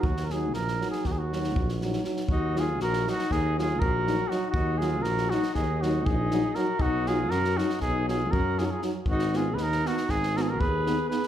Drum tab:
SD |-oo-ooooo-oo-ooooo|--o-ooooo-o---o-o-|--o-ooooo-o---o-o-|--o-ooooo-o---o-o-|
BD |o-------o---o-----|o-------o---o-----|o-------o---o-----|o-------o---o-----|

SD |-oo-ooooooo---o-oo|
BD |o-------o---o-----|